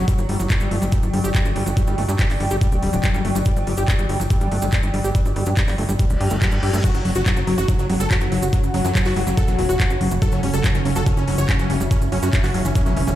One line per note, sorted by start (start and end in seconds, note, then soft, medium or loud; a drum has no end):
0.00 6.88 F#3 medium
0.08 0.13 G3 medium
0.08 kick loud
0.08 closed hi-hat medium
0.08 cabasa medium
0.16 0.26 G1 medium
0.16 6.84 D5 medium
0.16 closed hi-hat soft
0.16 cabasa soft
0.29 0.36 G1 loud
0.29 0.37 G3 medium
0.29 open hi-hat loud
0.40 0.47 G1 loud
0.40 0.43 F#3 medium
0.40 closed hi-hat soft
0.40 cabasa medium
0.50 0.56 G3 medium
0.50 6.84 G5 medium
0.50 kick loud
0.50 clap loud
0.50 closed hi-hat medium
0.50 cabasa medium
0.60 0.68 G1 medium
0.60 0.69 G3 medium
0.60 closed hi-hat soft
0.60 cabasa soft
0.71 0.79 G1 loud
0.71 0.77 A3 medium
0.71 open hi-hat loud
0.82 0.89 G1 medium
0.82 0.85 G3 loud
0.82 closed hi-hat soft
0.82 cabasa medium
0.92 0.98 G3 medium
0.92 kick loud
0.92 closed hi-hat medium
0.92 cabasa medium
1.03 1.10 G1 medium
1.03 closed hi-hat soft
1.03 cabasa soft
1.13 1.21 G1 loud
1.13 1.19 G3 medium
1.13 open hi-hat loud
1.24 1.32 G1 medium
1.24 1.30 G4 medium
1.24 closed hi-hat soft
1.24 cabasa medium
1.35 1.40 G3 medium
1.35 kick loud
1.35 clap loud
1.35 closed hi-hat medium
1.35 cabasa medium
1.45 1.53 G1 medium
1.45 closed hi-hat soft
1.45 cabasa soft
1.56 1.63 G1 loud
1.56 1.64 G3 medium
1.56 open hi-hat loud
1.66 1.74 G1 medium
1.66 1.70 F#3 medium
1.66 closed hi-hat soft
1.66 cabasa medium
1.77 1.82 G3 medium
1.77 kick loud
1.77 closed hi-hat medium
1.77 cabasa medium
1.87 1.95 G1 medium
1.87 1.96 G3 medium
1.87 closed hi-hat soft
1.87 cabasa soft
1.98 2.06 G1 loud
1.98 2.04 A3 medium
1.98 open hi-hat loud
2.09 2.16 G2 loud
2.09 2.12 G3 loud
2.09 closed hi-hat soft
2.09 cabasa medium
2.19 2.25 G3 medium
2.19 kick loud
2.19 clap loud
2.19 closed hi-hat medium
2.19 cabasa medium
2.30 2.37 G1 medium
2.30 clap soft
2.30 open hi-hat medium
2.30 cabasa soft
2.40 2.48 G1 loud
2.40 2.46 G3 medium
2.40 open hi-hat loud
2.50 2.58 G1 medium
2.50 2.56 G4 medium
2.50 closed hi-hat soft
2.50 cabasa medium
2.61 2.67 G3 medium
2.61 kick loud
2.61 closed hi-hat medium
2.61 cabasa medium
2.72 2.79 D1 medium
2.72 closed hi-hat soft
2.72 cabasa soft
2.83 2.90 D1 loud
2.83 2.91 G3 medium
2.83 open hi-hat loud
2.93 3.01 D1 medium
2.93 2.96 F#3 medium
2.93 closed hi-hat soft
2.93 cabasa medium
3.03 3.09 G3 medium
3.03 kick loud
3.03 clap loud
3.03 closed hi-hat medium
3.03 cabasa medium
3.14 3.22 G1 medium
3.14 3.22 G3 medium
3.14 closed hi-hat soft
3.14 cabasa soft
3.25 3.32 G1 loud
3.25 3.30 A3 medium
3.25 open hi-hat loud
3.35 3.43 G1 medium
3.35 3.39 G3 loud
3.35 closed hi-hat soft
3.35 cabasa medium
3.45 3.51 G3 medium
3.45 kick loud
3.45 closed hi-hat medium
3.45 cabasa medium
3.56 3.64 G1 medium
3.56 closed hi-hat soft
3.56 cabasa soft
3.67 3.75 G1 loud
3.67 3.73 G3 medium
3.67 open hi-hat loud
3.77 3.85 G1 medium
3.77 3.83 G4 medium
3.77 closed hi-hat soft
3.77 cabasa medium
3.88 3.94 G3 medium
3.88 kick loud
3.88 clap loud
3.88 closed hi-hat medium
3.88 cabasa medium
3.99 4.06 G1 medium
3.99 closed hi-hat soft
3.99 cabasa soft
4.09 4.17 G1 loud
4.09 4.18 G3 medium
4.09 open hi-hat loud
4.20 4.27 G1 medium
4.20 4.23 F#3 medium
4.20 closed hi-hat soft
4.20 cabasa medium
4.30 4.36 G3 medium
4.30 kick loud
4.30 closed hi-hat medium
4.30 cabasa medium
4.41 4.48 G1 medium
4.41 4.49 G3 medium
4.41 closed hi-hat soft
4.41 cabasa soft
4.52 4.59 G1 loud
4.52 4.57 A3 medium
4.52 open hi-hat loud
4.62 4.70 G1 medium
4.62 4.65 G3 loud
4.62 closed hi-hat soft
4.62 cabasa medium
4.72 4.78 G3 medium
4.72 kick loud
4.72 clap loud
4.72 closed hi-hat medium
4.72 cabasa medium
4.83 4.91 G1 medium
4.83 closed hi-hat soft
4.83 cabasa soft
4.94 5.01 G1 loud
4.94 4.99 G3 medium
4.94 open hi-hat loud
5.04 5.12 G1 medium
5.04 5.10 G4 medium
5.04 closed hi-hat soft
5.04 cabasa medium
5.15 5.20 G3 medium
5.15 kick loud
5.15 closed hi-hat medium
5.15 cabasa medium
5.25 5.33 G1 medium
5.25 closed hi-hat soft
5.25 cabasa soft
5.36 5.44 G1 loud
5.36 5.44 G3 medium
5.36 open hi-hat loud
5.46 5.54 G2 loud
5.46 5.50 F#3 medium
5.46 closed hi-hat soft
5.46 cabasa medium
5.57 5.63 G3 medium
5.57 kick loud
5.57 clap loud
5.57 closed hi-hat medium
5.57 cabasa medium
5.68 5.75 G1 medium
5.68 5.76 G3 medium
5.68 clap soft
5.68 open hi-hat medium
5.68 cabasa soft
5.78 5.86 G1 loud
5.78 5.84 A3 medium
5.78 open hi-hat loud
5.89 5.96 G1 medium
5.89 5.92 G3 loud
5.89 closed hi-hat soft
5.89 cabasa medium
5.99 6.05 G3 medium
5.99 kick loud
5.99 closed hi-hat medium
5.99 reverse cymbal medium
5.99 cabasa medium
6.10 6.17 D1 medium
6.10 closed hi-hat soft
6.10 cabasa soft
6.21 6.28 G2 loud
6.21 6.29 G4 medium
6.21 open hi-hat loud
6.30 6.39 G1 loud
6.30 6.37 A3 medium
6.30 closed hi-hat soft
6.30 cabasa medium
6.42 6.47 F#3 loud
6.42 kick loud
6.42 clap loud
6.42 closed hi-hat medium
6.42 cabasa medium
6.51 6.60 G2 medium
6.51 closed hi-hat soft
6.51 cabasa soft
6.63 6.70 G2 loud
6.63 6.71 G4 loud
6.63 open hi-hat loud
6.73 6.81 G2 medium
6.73 6.79 A3 loud
6.73 closed hi-hat soft
6.73 cabasa medium
6.84 13.15 C#3 medium
6.84 6.89 F#3 medium
6.84 6.90 F#4 medium
6.84 13.15 F#4 medium
6.84 kick loud
6.84 closed hi-hat medium
6.84 crash medium
6.84 cabasa medium
6.94 7.02 F#1 medium
6.94 7.01 F#3 medium
6.94 closed hi-hat soft
6.94 cabasa soft
7.05 7.13 F#1 loud
7.05 7.11 F#3 medium
7.05 open hi-hat loud
7.15 7.23 F#1 medium
7.15 7.22 F#4 medium
7.15 7.21 F#4 medium
7.15 closed hi-hat soft
7.15 cabasa medium
7.26 7.33 F#3 medium
7.26 7.32 F#3 medium
7.26 kick loud
7.26 clap loud
7.26 closed hi-hat medium
7.26 cabasa medium
7.36 7.44 F#1 medium
7.36 7.43 F#3 medium
7.36 closed hi-hat soft
7.36 cabasa soft
7.41 13.15 C#5 medium
7.47 7.55 F#1 loud
7.47 7.54 F#3 medium
7.47 7.56 F#3 medium
7.47 open hi-hat loud
7.58 7.65 F#1 medium
7.58 7.61 E3 medium
7.58 7.64 F#4 loud
7.58 closed hi-hat soft
7.58 cabasa medium
7.68 7.74 F#3 medium
7.68 7.75 F#3 medium
7.68 kick loud
7.68 closed hi-hat medium
7.68 cabasa medium
7.79 7.86 F#1 medium
7.79 7.85 F#3 medium
7.79 7.87 F#3 medium
7.79 closed hi-hat soft
7.79 cabasa soft
7.90 7.97 F#1 loud
7.90 7.96 F#3 medium
7.90 7.95 G3 medium
7.90 open hi-hat loud
8.00 8.08 F#1 medium
8.00 8.03 G3 medium
8.00 8.06 A4 medium
8.00 closed hi-hat soft
8.00 cabasa medium
8.11 8.17 F#3 medium
8.11 8.16 F#3 medium
8.11 11.50 F#5 medium
8.11 kick loud
8.11 clap loud
8.11 closed hi-hat medium
8.11 cabasa medium
8.20 8.29 F#1 medium
8.20 8.28 F#3 medium
8.20 closed hi-hat soft
8.20 cabasa soft
8.32 8.39 F#1 loud
8.32 8.38 F#3 medium
8.32 8.37 F#3 medium
8.32 open hi-hat loud
8.42 8.50 F#1 medium
8.42 8.48 F#4 medium
8.42 closed hi-hat soft
8.42 cabasa medium
8.53 8.59 F#3 medium
8.53 8.58 F#3 medium
8.53 kick loud
8.53 closed hi-hat medium
8.53 cabasa medium
8.63 8.71 F#1 medium
8.63 closed hi-hat soft
8.63 cabasa soft
8.74 8.82 F#1 loud
8.74 8.80 F#3 medium
8.74 8.82 F#3 medium
8.74 open hi-hat loud
8.85 8.92 F#2 loud
8.85 8.88 E3 medium
8.85 8.91 F#3 medium
8.85 closed hi-hat soft
8.85 cabasa medium
8.95 9.02 F#3 medium
8.95 9.01 F#3 medium
8.95 kick loud
8.95 clap loud
8.95 closed hi-hat medium
8.95 cabasa medium
9.05 9.13 F#1 medium
9.05 9.14 F#3 medium
9.05 9.12 F#4 medium
9.05 clap soft
9.05 open hi-hat medium
9.05 cabasa soft
9.16 9.24 F#1 loud
9.16 9.23 F#3 medium
9.16 9.22 G3 medium
9.16 open hi-hat loud
9.27 9.34 F#1 medium
9.27 9.33 F#3 medium
9.27 9.30 G3 medium
9.27 closed hi-hat soft
9.27 cabasa medium
9.37 9.43 F#3 medium
9.37 9.44 A4 medium
9.37 kick loud
9.37 closed hi-hat medium
9.37 cabasa medium
9.48 9.56 E1 medium
9.48 9.54 F#3 medium
9.48 closed hi-hat soft
9.48 cabasa soft
9.59 9.66 E1 loud
9.59 9.65 F#3 medium
9.59 9.64 F#3 medium
9.59 open hi-hat loud
9.69 9.77 E1 medium
9.69 10.13 F#4 loud
9.69 9.75 F#4 medium
9.69 closed hi-hat soft
9.69 cabasa medium
9.80 9.85 F#3 medium
9.80 kick loud
9.80 clap loud
9.80 closed hi-hat medium
9.80 cabasa medium
9.90 9.98 F#1 medium
9.90 closed hi-hat soft
9.90 cabasa soft
10.01 10.08 F#1 loud
10.01 10.09 F#3 medium
10.01 open hi-hat loud
10.11 10.19 F#1 medium
10.11 10.15 E3 medium
10.11 closed hi-hat soft
10.11 cabasa medium
10.22 10.27 F#3 medium
10.22 10.28 A4 loud
10.22 kick loud
10.22 closed hi-hat medium
10.22 cabasa medium
10.32 10.40 F#1 medium
10.32 10.41 F#3 medium
10.32 10.39 C#4 medium
10.32 closed hi-hat soft
10.32 cabasa soft
10.43 10.51 F#1 medium
10.43 10.49 G3 medium
10.43 10.49 C#4 medium
10.43 open hi-hat loud
10.54 10.61 F#1 medium
10.54 10.57 G3 medium
10.54 10.60 A4 loud
10.54 closed hi-hat soft
10.54 cabasa medium
10.64 10.70 F#3 medium
10.64 10.71 C#4 medium
10.64 kick loud
10.64 clap loud
10.64 closed hi-hat medium
10.64 cabasa medium
10.75 10.82 F#1 medium
10.75 10.81 C#4 medium
10.75 closed hi-hat soft
10.75 cabasa soft
10.85 10.93 F#1 loud
10.85 10.91 F#3 medium
10.85 10.92 C#4 medium
10.85 open hi-hat loud
10.96 11.03 F#1 medium
10.96 11.01 F#4 medium
10.96 11.02 A4 loud
10.96 closed hi-hat soft
10.96 cabasa medium
11.06 11.12 F#3 medium
11.06 11.13 C#4 medium
11.06 kick loud
11.06 closed hi-hat medium
11.06 cabasa medium
11.17 11.25 F#1 medium
11.17 11.23 C#4 medium
11.17 closed hi-hat soft
11.17 cabasa soft
11.28 11.35 F#1 loud
11.28 11.36 F#3 medium
11.28 11.34 C#4 medium
11.28 open hi-hat loud
11.37 11.46 F#1 medium
11.37 11.41 E3 medium
11.37 11.45 C#5 medium
11.37 13.15 E5 medium
11.37 closed hi-hat soft
11.37 cabasa medium
11.49 11.54 F#3 medium
11.49 11.55 C#4 medium
11.49 kick loud
11.49 clap loud
11.49 closed hi-hat medium
11.49 cabasa medium
11.59 11.67 F#1 medium
11.59 11.68 F#3 medium
11.59 11.66 C#4 medium
11.59 closed hi-hat soft
11.59 cabasa soft
11.70 11.77 F#1 loud
11.70 11.75 G3 medium
11.70 11.76 C#4 medium
11.70 open hi-hat loud
11.80 11.88 F#1 medium
11.80 11.84 G3 medium
11.80 closed hi-hat soft
11.80 cabasa medium
11.91 11.96 F#3 medium
11.91 11.97 C#4 medium
11.91 kick loud
11.91 closed hi-hat medium
11.91 cabasa medium
12.02 12.09 F#1 medium
12.02 closed hi-hat soft
12.02 cabasa soft
12.12 12.20 F#1 loud
12.12 12.18 F#3 medium
12.12 12.18 C#4 medium
12.12 open hi-hat loud
12.23 12.30 F#2 medium
12.23 12.29 C#4 medium
12.23 12.28 F#4 medium
12.23 closed hi-hat soft
12.23 cabasa medium
12.33 12.39 F#3 medium
12.33 12.40 C#4 medium
12.33 kick loud
12.33 clap loud
12.33 closed hi-hat medium
12.33 cabasa medium
12.44 12.51 F#1 medium
12.44 12.50 F#4 loud
12.44 clap soft
12.44 open hi-hat medium
12.44 cabasa soft
12.54 12.62 F#1 loud
12.54 12.63 F#3 medium
12.54 12.61 C#4 medium
12.54 open hi-hat loud
12.65 12.72 F#1 medium
12.65 12.68 E3 medium
12.65 12.71 C#4 medium
12.65 closed hi-hat soft
12.65 cabasa medium
12.75 12.81 F#3 medium
12.75 12.82 C#4 loud
12.75 kick loud
12.75 closed hi-hat medium
12.75 cabasa medium
12.86 12.94 E1 medium
12.86 12.94 F#3 medium
12.86 12.92 C#4 medium
12.86 closed hi-hat soft
12.86 cabasa soft
12.97 13.04 E1 loud
12.97 13.02 E3 medium
12.97 13.03 C#4 medium
12.97 open hi-hat loud
13.07 13.15 E1 medium
13.07 13.10 G3 medium
13.07 13.15 C#4 loud
13.07 closed hi-hat soft
13.07 cabasa medium